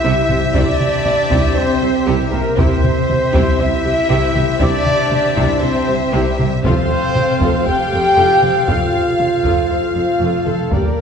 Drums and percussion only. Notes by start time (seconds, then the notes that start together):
0.29 taiko low-mid
0.55 taiko
0.80 taiko low-mid
1.06 taiko low-mid
1.31 taiko
2.33 taiko low-mid
2.59 taiko
2.84 taiko low-mid
3.10 taiko low-mid
3.34 taiko
4.35 taiko low-mid
4.60 taiko
4.86 taiko low-mid
5.12 taiko low-mid
5.37 taiko
6.39 taiko low-mid
6.64 taiko
6.90 taiko low-mid
7.15 taiko low-mid
7.41 taiko
8.43 taiko low-mid
8.69 taiko
8.94 taiko low-mid
9.20 taiko low-mid
9.45 taiko
10.47 taiko low-mid
10.72 taiko